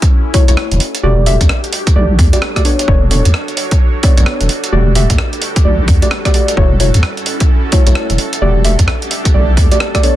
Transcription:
Already playing: analog synth pad C#4 E4 F#4 A4, ambient pad C#5
0.02 kick, closed hi-hat
0.34 synth stab A3 E4 F#4 C#5, kick, open hi-hat
0.48 wobble bass B1, synth stab A3 E4 F#4 C#5, closed hi-hat
0.57 cross-stick
0.71 wobble bass E1, closed hi-hat
0.80 ambient pad D4, analog synth pad D4 G4, open hi-hat
0.87 ambient pad G3
0.95 closed hi-hat
1.03 wobble bass E1, synth stab A3 F#4 G4 D5
1.26 synth stab A3 F#4 G4 E5, open hi-hat
1.41 wobble bass E2, kick, closed hi-hat
1.49 cross-stick
1.64 closed hi-hat
1.73 open hi-hat
1.87 kick, closed hi-hat
1.96 wobble bass B1, synth stab A3 F#4 G4 D5
2.19 wobble bass E2, finger snap, kick, open hi-hat
2.33 synth stab A3 F#4 G4 D5, closed hi-hat
2.42 cross-stick
2.56 synth stab A3 F#4 G4 D5, kick, cross-stick, closed hi-hat
2.65 synth stab B3 D4 A4 C#5, analog synth pad C#5, open hi-hat
2.78 ambient pad B4, closed hi-hat
2.88 wobble bass E1, synth stab B3 D4 A4 C#5, kick
2.99 ambient pad C#5
3.11 synth stab B3 D4 A4 C#5, open hi-hat
3.25 wobble bass E2, closed hi-hat
3.34 cross-stick
3.48 closed hi-hat
3.57 open hi-hat
3.71 kick, closed hi-hat
4.03 synth stab B3 D4 A4 C#5, kick, open hi-hat
4.17 wobble bass B1, synth stab B3 D4 A4 C#5, closed hi-hat
4.26 cross-stick
4.41 wobble bass E1, closed hi-hat
4.49 analog synth pad G4, open hi-hat
4.56 ambient pad G3
4.64 ambient pad F#5, closed hi-hat
4.72 wobble bass E1, synth stab A3 F#4 G4 D5
4.95 synth stab A3 F#4 G4 E5, open hi-hat
5.10 wobble bass E2, kick, closed hi-hat
5.18 ambient pad A5, cross-stick
5.33 closed hi-hat
5.42 open hi-hat
5.56 kick, closed hi-hat
5.65 wobble bass B1, synth stab A3 F#4 G4 D5
5.88 wobble bass E2, finger snap, kick, open hi-hat
6.02 synth stab A3 F#4 G4 D5, closed hi-hat
6.11 cross-stick
6.25 synth stab A3 F#4 G4 D5, kick, cross-stick, closed hi-hat
6.34 synth stab A3 F#4 G4 D5, open hi-hat
6.48 closed hi-hat
6.57 wobble bass E1, synth stab A3 E4 F#4 C#5, analog synth pad C#4 E4, ambient pad C#4, kick
6.69 ambient pad F#4 E5
6.80 synth stab A3 E4 F#4 C#5, open hi-hat
6.94 wobble bass E2, closed hi-hat
7.03 cross-stick
7.17 closed hi-hat
7.26 open hi-hat
7.40 kick, closed hi-hat
7.72 synth stab A3 E4 F#4 C#5, kick, open hi-hat
7.87 wobble bass B1, synth stab A3 E4 F#4 C#5, closed hi-hat
7.95 cross-stick
8.10 wobble bass E1, closed hi-hat
8.18 analog synth pad D4 G4, ambient pad D4, open hi-hat
8.32 ambient pad G3, closed hi-hat
8.42 wobble bass E1, synth stab A3 F#4 G4 D5
8.56 ambient pad F#5
8.65 synth stab A3 F#4 G4 E5, open hi-hat
8.79 wobble bass E2, kick, closed hi-hat
8.88 cross-stick
9.02 closed hi-hat
9.11 open hi-hat
9.25 kick, closed hi-hat
9.34 wobble bass B1, synth stab A3 F#4 G4 D5
9.57 wobble bass E2, finger snap, kick, open hi-hat
9.71 synth stab A3 F#4 G4 D5, closed hi-hat
9.80 cross-stick
9.95 synth stab A3 F#4 G4 D5, kick, cross-stick, closed hi-hat
10.03 synth stab B3 D4 A4 C#5, analog synth pad D4 C#5, open hi-hat

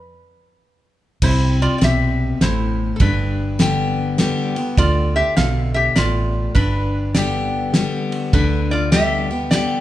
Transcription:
Already playing: resonator guitar played with a steel bar B4
1.22 fingered electric bass C2, steel-string acoustic guitar C3, resonator guitar played with a steel bar E4 C5, kick, crash
1.62 resonator guitar played with a steel bar F4 D5
1.78 fingered electric bass B1, steel-string acoustic guitar B2, resonator guitar played with a steel bar D5, snare, ride
1.84 resonator guitar played with a steel bar G4 E5
2.41 fingered electric bass A1, steel-string acoustic guitar A2, resonator guitar played with a steel bar E4 C5, snare, ride
2.96 steel-string acoustic guitar G2, resonator guitar played with a steel bar A4
3.00 fingered electric bass G1, resonator guitar played with a steel bar D4 B4, kick, ride
3.59 steel-string acoustic guitar D3 G3 B3 G4, snare, ride
4.18 steel-string acoustic guitar D3 G3 B3 G4, snare, ride
4.56 steel-string acoustic guitar B3 G4, ride
4.77 fingered electric bass D2, steel-string acoustic guitar D3, resonator guitar played with a steel bar F4 D5, kick, ride
5.16 resonator guitar played with a steel bar G4 E5
5.37 fingered electric bass B1, steel-string acoustic guitar B2, resonator guitar played with a steel bar A4 F5, snare, ride
5.74 resonator guitar played with a steel bar G4 E5
5.96 fingered electric bass A1, steel-string acoustic guitar A2, resonator guitar played with a steel bar F4 D5, snare, ride
6.55 fingered electric bass G1, steel-string acoustic guitar G2, resonator guitar played with a steel bar D4 B4, kick, ride
7.14 steel-string acoustic guitar D3 G3 B3 G4, resonator guitar played with a steel bar G4 D5, snare, ride
7.74 steel-string acoustic guitar D3 G3 B3 G4, snare, ride
8.12 ride
8.33 fingered electric bass D2, steel-string acoustic guitar D3, resonator guitar played with a steel bar D4 B4, kick, ride
8.71 resonator guitar played with a steel bar F4 D5
8.92 steel-string acoustic guitar D3 G3 B3 G4, resonator guitar played with a steel bar G4 E5, snare, ride
9.31 steel-string acoustic guitar B3 G4
9.51 steel-string acoustic guitar D3 G3 B3 G4, resonator guitar played with a steel bar G4 D5, snare, ride

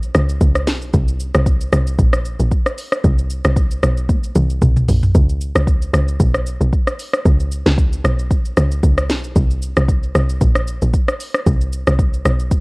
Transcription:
Already playing: log drum bass B1
0.03 shaker
0.15 log drum bass C#2, cross-stick, shaker
0.29 shaker
0.41 log drum bass C#2, kick, shaker
0.55 cross-stick, shaker
0.67 log drum bass B1, snare, open hi-hat, shaker
0.82 shaker
0.94 log drum bass C2, kick, shaker
1.08 shaker
1.20 shaker
1.34 log drum bass C2, cross-stick, shaker
1.46 kick, shaker
1.61 shaker
1.73 log drum bass C2, cross-stick, shaker
1.87 shaker
1.99 log drum bass A#1, kick, shaker
2.13 cross-stick, shaker
2.25 shaker
2.40 log drum bass A#1, shaker
2.52 kick, shaker
2.66 cross-stick, shaker
2.78 open hi-hat, shaker
2.92 cross-stick, shaker
3.04 log drum bass C2, kick, shaker
3.19 shaker
3.30 shaker
3.45 log drum bass C2, cross-stick, shaker
3.57 kick, shaker
3.71 shaker
3.83 log drum bass B1, cross-stick, shaker
3.97 shaker
4.09 kick, high tom, shaker
4.24 shaker
4.36 log drum bass C2, mid tom, shaker
4.50 shaker
4.62 log drum bass C2, kick, mid tom, shaker
4.76 mid tom, shaker
4.88 log drum bass A#1, floor tom, open hi-hat, shaker
5.03 floor tom, shaker
5.15 log drum bass C#2, kick, shaker
5.29 shaker
5.41 shaker
5.55 log drum bass C#2, cross-stick, shaker
5.67 kick, shaker
5.82 shaker
5.93 log drum bass C#2, cross-stick, shaker
6.08 shaker
6.20 log drum bass B1, kick, shaker
6.34 cross-stick, shaker
6.46 shaker
6.61 log drum bass B1, shaker
6.73 kick, shaker
6.87 cross-stick, shaker
6.99 open hi-hat, shaker
7.13 cross-stick, shaker
7.25 log drum bass C#2, kick, shaker
7.40 shaker
7.52 shaker
7.66 log drum bass C#2, snare, shaker
7.78 kick, shaker
7.93 shaker
8.04 log drum bass B1, cross-stick, shaker
8.19 shaker
8.31 kick, shaker
8.45 shaker
8.57 log drum bass C#2, cross-stick, shaker
8.71 shaker
8.83 log drum bass C#2, kick, shaker
8.98 cross-stick, shaker
9.10 log drum bass B1, snare, open hi-hat, shaker
9.24 shaker
9.36 log drum bass C2, kick, shaker
9.50 shaker
9.62 shaker
9.77 log drum bass C2, cross-stick, shaker
9.88 kick, shaker
10.03 shaker
10.15 log drum bass C2, cross-stick, shaker
10.29 shaker
10.41 log drum bass A#1, kick, shaker
10.55 cross-stick, shaker
10.67 shaker
10.82 log drum bass A#1, shaker
10.94 kick, shaker
11.08 cross-stick, shaker
11.20 open hi-hat, shaker
11.34 cross-stick, shaker
11.46 log drum bass C2, kick, shaker
11.61 shaker
11.72 shaker
11.87 log drum bass C2, cross-stick, shaker
11.99 kick, shaker
12.14 shaker
12.25 log drum bass B1, cross-stick, shaker
12.40 shaker
12.51 kick, shaker

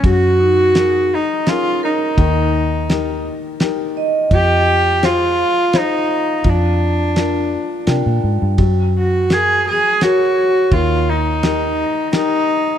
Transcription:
Already playing: vibraphone C#4
0.03 fingered electric bass F#2, upright piano F#3, kick, ride
0.08 cello F#4
0.40 vibraphone D#4
0.75 upright piano F#4 G#4 A#4, snare, ride
1.15 cello D#4
1.47 upright piano C#4 G#4 A#4, cello F4, snare, ride
1.83 cello D#4, vibraphone A#4
2.17 fingered electric bass D#2, upright piano D#3, kick, ride
2.89 upright piano D#4 G4 A#4, snare, ride
3.60 upright piano D#4 G4 A#4, snare, ride
3.97 vibraphone D#5
4.31 fingered electric bass F2, upright piano F3, cello G4, kick, ride
5.03 upright piano F4 G#4 C5, cello F4, snare, ride
5.38 vibraphone F5
5.73 upright piano F4 G#4 C5, snare, ride
5.78 cello D#4
6.44 fingered electric bass F2, upright piano F3, kick, ride
6.49 cello D4
7.16 upright piano D4 F4 A#4, snare, ride
7.87 fingered electric bass C3, upright piano D4 F4 A#4, vibraphone G5, snare, ride
8.06 fingered electric bass A#2
8.24 fingered electric bass G#2
8.42 fingered electric bass G2
8.58 fingered electric bass F#2, upright piano F#3, kick, ride
8.98 cello F#4
9.30 upright piano F#4 G#4 A#4, cello G#4, snare, ride
9.69 cello G#4
10.01 upright piano F#4 G#4 A#4, cello F#4, vibraphone C#5, snare, ride
10.71 fingered electric bass D#2, upright piano D#3, cello F4, kick, ride
11.09 cello D#4
11.43 upright piano D#4 G4 A#4, snare, ride
12.12 upright piano D#4 G4 A#4, cello D#4, snare, ride

